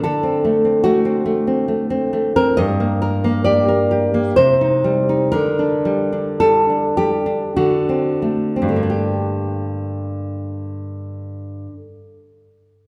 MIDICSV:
0, 0, Header, 1, 2, 480
1, 0, Start_track
1, 0, Key_signature, -2, "minor"
1, 0, Tempo, 826446
1, 27, Time_signature, 3, 2, 24, 8
1, 988, Tempo, 884956
1, 1948, Tempo, 910470
1, 2428, Tempo, 964630
1, 2908, Tempo, 1060071
1, 3388, Tempo, 1165049
1, 3868, Tempo, 1330377
1, 5308, Tempo, 1372998
1, 5765, End_track
2, 0, Start_track
2, 0, Title_t, "Nylon-string guitar"
2, 0, Program_c, 0, 24
2, 20, Note_on_c, 0, 69, 75
2, 24, Note_on_c, 0, 50, 51
2, 135, Note_on_c, 0, 60, 44
2, 259, Note_on_c, 0, 57, 47
2, 369, Note_off_c, 0, 60, 0
2, 376, Note_on_c, 0, 60, 41
2, 479, Note_off_c, 0, 69, 0
2, 486, Note_on_c, 0, 66, 79
2, 489, Note_off_c, 0, 57, 0
2, 495, Note_on_c, 0, 57, 52
2, 603, Note_off_c, 0, 60, 0
2, 610, Note_on_c, 0, 60, 50
2, 722, Note_off_c, 0, 57, 0
2, 729, Note_on_c, 0, 57, 44
2, 849, Note_off_c, 0, 60, 0
2, 856, Note_on_c, 0, 60, 51
2, 970, Note_off_c, 0, 57, 0
2, 977, Note_on_c, 0, 57, 49
2, 1091, Note_off_c, 0, 60, 0
2, 1097, Note_on_c, 0, 60, 52
2, 1214, Note_off_c, 0, 57, 0
2, 1220, Note_on_c, 0, 57, 53
2, 1325, Note_off_c, 0, 66, 0
2, 1339, Note_off_c, 0, 60, 0
2, 1343, Note_off_c, 0, 57, 0
2, 1345, Note_on_c, 0, 60, 51
2, 1346, Note_on_c, 0, 70, 80
2, 1453, Note_off_c, 0, 50, 0
2, 1459, Note_on_c, 0, 75, 99
2, 1466, Note_on_c, 0, 43, 63
2, 1471, Note_off_c, 0, 70, 0
2, 1472, Note_off_c, 0, 60, 0
2, 1585, Note_on_c, 0, 58, 49
2, 1702, Note_on_c, 0, 70, 61
2, 1818, Note_off_c, 0, 58, 0
2, 1824, Note_on_c, 0, 58, 55
2, 1919, Note_off_c, 0, 75, 0
2, 1931, Note_off_c, 0, 70, 0
2, 1934, Note_on_c, 0, 74, 78
2, 1939, Note_on_c, 0, 67, 58
2, 2058, Note_off_c, 0, 67, 0
2, 2061, Note_on_c, 0, 70, 56
2, 2179, Note_on_c, 0, 67, 48
2, 2295, Note_off_c, 0, 58, 0
2, 2301, Note_on_c, 0, 58, 53
2, 2401, Note_off_c, 0, 43, 0
2, 2401, Note_off_c, 0, 74, 0
2, 2418, Note_on_c, 0, 72, 82
2, 2424, Note_on_c, 0, 48, 65
2, 2425, Note_off_c, 0, 58, 0
2, 2425, Note_off_c, 0, 67, 0
2, 2425, Note_off_c, 0, 70, 0
2, 2542, Note_on_c, 0, 63, 49
2, 2658, Note_on_c, 0, 55, 51
2, 2776, Note_off_c, 0, 63, 0
2, 2782, Note_on_c, 0, 63, 53
2, 2883, Note_off_c, 0, 72, 0
2, 2891, Note_off_c, 0, 48, 0
2, 2893, Note_on_c, 0, 70, 81
2, 2900, Note_on_c, 0, 50, 64
2, 2905, Note_off_c, 0, 55, 0
2, 2906, Note_off_c, 0, 63, 0
2, 3018, Note_on_c, 0, 62, 47
2, 3137, Note_on_c, 0, 55, 51
2, 3255, Note_off_c, 0, 62, 0
2, 3261, Note_on_c, 0, 62, 47
2, 3363, Note_off_c, 0, 70, 0
2, 3384, Note_off_c, 0, 55, 0
2, 3385, Note_on_c, 0, 69, 82
2, 3389, Note_on_c, 0, 55, 52
2, 3503, Note_off_c, 0, 62, 0
2, 3508, Note_on_c, 0, 62, 44
2, 3611, Note_off_c, 0, 69, 0
2, 3620, Note_off_c, 0, 55, 0
2, 3621, Note_on_c, 0, 67, 64
2, 3625, Note_on_c, 0, 55, 42
2, 3735, Note_off_c, 0, 62, 0
2, 3740, Note_on_c, 0, 62, 48
2, 3848, Note_off_c, 0, 50, 0
2, 3857, Note_off_c, 0, 67, 0
2, 3865, Note_on_c, 0, 66, 67
2, 3866, Note_off_c, 0, 62, 0
2, 3866, Note_on_c, 0, 50, 53
2, 3869, Note_off_c, 0, 55, 0
2, 3983, Note_on_c, 0, 60, 40
2, 4103, Note_on_c, 0, 57, 44
2, 4221, Note_off_c, 0, 60, 0
2, 4225, Note_on_c, 0, 60, 43
2, 4246, Note_on_c, 0, 43, 51
2, 4266, Note_off_c, 0, 50, 0
2, 4271, Note_on_c, 0, 50, 43
2, 4296, Note_off_c, 0, 57, 0
2, 4297, Note_on_c, 0, 58, 41
2, 4320, Note_off_c, 0, 60, 0
2, 4322, Note_on_c, 0, 62, 44
2, 4331, Note_off_c, 0, 66, 0
2, 4346, Note_on_c, 0, 67, 46
2, 5343, Note_off_c, 0, 43, 0
2, 5367, Note_off_c, 0, 50, 0
2, 5393, Note_off_c, 0, 58, 0
2, 5417, Note_off_c, 0, 62, 0
2, 5441, Note_off_c, 0, 67, 0
2, 5765, End_track
0, 0, End_of_file